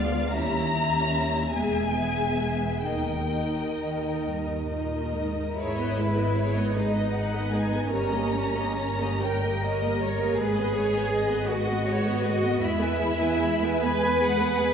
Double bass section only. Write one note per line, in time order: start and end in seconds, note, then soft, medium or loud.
0.00 0.19 D2 medium
0.34 1.40 D#2 medium
1.54 2.69 E1 medium
2.86 4.08 D#2 soft
4.24 5.43 D#2 soft
5.58 7.88 G#1 medium
7.93 10.36 G1 soft
10.40 12.63 G#1 medium
12.63 14.74 E2 medium